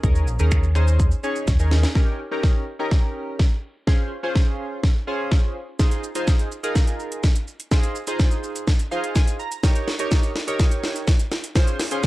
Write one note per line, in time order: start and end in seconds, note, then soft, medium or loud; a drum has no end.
0.03 0.28 D#2 loud
0.03 0.28 C#4 medium
0.03 0.28 D#4 medium
0.03 0.28 G#4 medium
0.03 0.28 A#4 medium
0.03 kick loud
0.03 shaker medium
0.15 shaker medium
0.27 0.36 A#1 medium
0.27 shaker medium
0.39 1.11 D#2 medium
0.39 0.64 C#4 medium
0.39 0.64 D#4 medium
0.39 0.64 G#4 medium
0.39 0.64 A#4 medium
0.39 shaker medium
0.51 finger snap loud
0.51 kick loud
0.51 shaker medium
0.63 shaker soft
0.75 1.08 C#4 medium
0.75 1.08 D#4 medium
0.75 1.08 G#4 medium
0.75 1.08 C5 loud
0.75 finger snap medium
0.75 shaker medium
0.88 shaker medium
0.99 kick loud
0.99 shaker medium
1.11 shaker medium
1.23 1.48 C#4 medium
1.23 1.48 D#4 medium
1.23 1.48 G#4 medium
1.23 1.48 C#5 medium
1.23 shaker soft
1.36 shaker medium
1.47 1.83 D#2 loud
1.47 kick loud
1.47 snare medium
1.47 shaker medium
1.59 1.84 C#4 medium
1.59 1.84 D#4 medium
1.59 1.84 G#4 medium
1.59 1.84 A#4 medium
1.59 shaker medium
1.71 snare medium
1.71 shaker soft
1.83 snare medium
1.83 shaker medium
1.95 2.20 C#4 medium
1.95 2.20 D#4 medium
1.95 2.20 G4 medium
1.95 2.20 A#4 medium
1.95 kick loud
1.95 snare medium
2.31 2.64 C#4 medium
2.31 2.64 D#4 medium
2.31 2.64 G4 medium
2.31 2.64 A#4 medium
2.43 kick loud
2.43 snare medium
2.79 3.44 C#4 medium
2.79 3.45 D#4 medium
2.79 3.45 G4 medium
2.79 3.45 A#4 medium
2.91 kick loud
2.91 snare medium
3.39 kick loud
3.39 snare medium
3.87 4.12 C#4 medium
3.87 4.12 F4 medium
3.87 4.12 G#4 medium
3.87 4.12 C5 medium
3.87 kick loud
3.87 snare medium
4.23 4.80 C#4 medium
4.23 4.80 F4 medium
4.23 4.80 G#4 medium
4.23 4.81 C5 medium
4.35 kick loud
4.35 snare medium
4.83 kick loud
4.83 snare medium
5.07 5.56 C#4 medium
5.07 5.56 F4 medium
5.07 5.56 G#4 medium
5.07 5.56 C5 medium
5.31 kick loud
5.31 snare medium
5.79 6.04 D#4 medium
5.79 6.04 F4 medium
5.79 6.04 G#4 medium
5.79 6.04 C5 medium
5.79 kick loud
5.79 snare medium
5.79 shaker medium
5.91 closed hi-hat medium
5.91 shaker medium
6.04 shaker medium
6.15 6.48 D#4 medium
6.15 6.48 F4 medium
6.15 6.48 G#4 medium
6.15 6.48 C5 medium
6.15 closed hi-hat medium
6.15 shaker medium
6.27 kick loud
6.27 snare medium
6.27 shaker medium
6.39 closed hi-hat soft
6.39 shaker soft
6.52 shaker medium
6.63 7.29 D#4 medium
6.63 7.29 F4 medium
6.63 7.29 G#4 medium
6.63 7.29 A#4 medium
6.63 closed hi-hat medium
6.63 shaker medium
6.75 kick loud
6.75 snare medium
6.75 shaker medium
6.87 closed hi-hat medium
6.87 shaker medium
7.00 shaker soft
7.12 closed hi-hat medium
7.12 shaker medium
7.23 kick loud
7.23 snare medium
7.23 shaker medium
7.36 closed hi-hat medium
7.36 shaker medium
7.48 shaker soft
7.60 closed hi-hat medium
7.60 shaker medium
7.71 7.96 D#4 medium
7.71 7.96 F4 medium
7.71 7.96 G#4 medium
7.71 7.96 C5 medium
7.71 kick loud
7.71 snare medium
7.71 shaker medium
7.83 closed hi-hat medium
7.83 shaker medium
7.96 shaker medium
8.07 8.64 D#4 medium
8.07 8.64 F4 medium
8.07 8.64 G#4 medium
8.07 8.65 C5 medium
8.07 closed hi-hat medium
8.07 shaker medium
8.19 kick loud
8.19 snare medium
8.19 shaker medium
8.31 closed hi-hat soft
8.31 shaker soft
8.44 shaker medium
8.56 closed hi-hat medium
8.56 shaker medium
8.67 kick loud
8.67 snare medium
8.67 shaker medium
8.79 closed hi-hat medium
8.79 shaker medium
8.91 9.40 D#4 medium
8.91 9.40 F4 medium
8.91 9.40 G#4 medium
8.91 9.40 C5 medium
8.91 9.14 F5 medium
8.91 shaker medium
9.04 closed hi-hat medium
9.04 shaker medium
9.15 9.38 G#5 medium
9.15 kick loud
9.15 snare medium
9.15 shaker medium
9.28 closed hi-hat medium
9.28 shaker medium
9.39 9.62 A#5 medium
9.39 shaker soft
9.52 closed hi-hat medium
9.52 shaker medium
9.63 9.88 D#4 medium
9.63 9.88 G4 medium
9.63 9.88 A#4 medium
9.63 9.88 C#5 medium
9.63 kick loud
9.63 snare medium
9.63 shaker medium
9.75 closed hi-hat medium
9.75 shaker medium
9.88 snare medium
9.88 shaker medium
9.99 10.32 D#4 medium
9.99 10.32 G4 medium
9.99 10.32 A#4 medium
9.99 10.32 C#5 medium
9.99 closed hi-hat medium
9.99 shaker medium
10.11 kick loud
10.11 snare medium
10.11 shaker medium
10.23 closed hi-hat soft
10.23 shaker soft
10.36 snare medium
10.36 shaker medium
10.47 11.13 D#4 medium
10.47 11.13 G4 medium
10.47 11.13 A#4 medium
10.47 11.13 C#5 medium
10.47 closed hi-hat medium
10.47 shaker medium
10.59 kick loud
10.59 snare medium
10.59 shaker medium
10.71 closed hi-hat medium
10.71 shaker medium
10.84 snare medium
10.84 shaker medium
10.96 closed hi-hat medium
10.96 shaker medium
11.07 kick loud
11.07 snare medium
11.07 shaker medium
11.20 closed hi-hat medium
11.20 shaker medium
11.32 snare medium
11.32 shaker medium
11.44 closed hi-hat medium
11.44 shaker medium
11.55 11.80 C#4 medium
11.55 11.80 F4 medium
11.55 11.80 G#4 medium
11.55 11.80 C5 loud
11.55 kick loud
11.55 snare loud
11.55 shaker medium
11.67 closed hi-hat medium
11.67 shaker medium
11.80 snare medium
11.80 open hi-hat medium
11.80 shaker medium
11.91 12.07 C#4 medium
11.91 12.07 F4 medium
11.91 12.07 G#4 medium
11.91 12.07 C5 medium
11.91 closed hi-hat medium
11.91 shaker medium
12.03 kick loud
12.03 snare medium
12.03 shaker medium